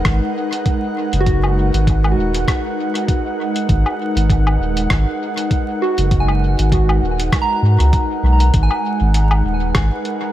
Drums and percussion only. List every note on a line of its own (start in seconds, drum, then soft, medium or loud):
0.05 kick loud
0.05 cross-stick medium
0.05 closed hi-hat soft
0.53 closed hi-hat soft
0.66 kick loud
0.66 closed hi-hat soft
1.13 closed hi-hat soft
1.26 kick loud
1.26 closed hi-hat soft
1.43 low woodblock medium
1.74 closed hi-hat soft
1.87 kick medium
1.87 closed hi-hat soft
2.04 low woodblock medium
2.34 closed hi-hat soft
2.48 kick medium
2.48 cross-stick medium
2.48 closed hi-hat soft
2.95 closed hi-hat soft
3.08 kick loud
3.08 closed hi-hat soft
3.56 closed hi-hat soft
3.69 kick medium
3.69 closed hi-hat soft
3.86 low woodblock medium
4.17 closed hi-hat soft
4.30 kick loud
4.30 closed hi-hat soft
4.47 low woodblock medium
4.77 closed hi-hat soft
4.90 kick loud
4.90 cross-stick medium
4.90 closed hi-hat soft
5.37 closed hi-hat soft
5.51 kick medium
5.51 closed hi-hat soft
5.98 closed hi-hat soft
6.11 kick medium
6.11 closed hi-hat soft
6.28 low woodblock medium
6.59 closed hi-hat medium
6.72 kick medium
6.72 closed hi-hat soft
6.89 low woodblock medium
7.20 closed hi-hat medium
7.32 kick medium
7.32 cross-stick medium
7.32 closed hi-hat soft
7.80 closed hi-hat soft
7.93 kick medium
7.93 closed hi-hat soft
8.40 closed hi-hat soft
8.54 kick loud
8.54 closed hi-hat medium
8.71 low woodblock medium
9.14 closed hi-hat medium
9.31 low woodblock medium
9.75 kick loud
9.75 cross-stick medium
9.75 closed hi-hat medium
10.05 closed hi-hat soft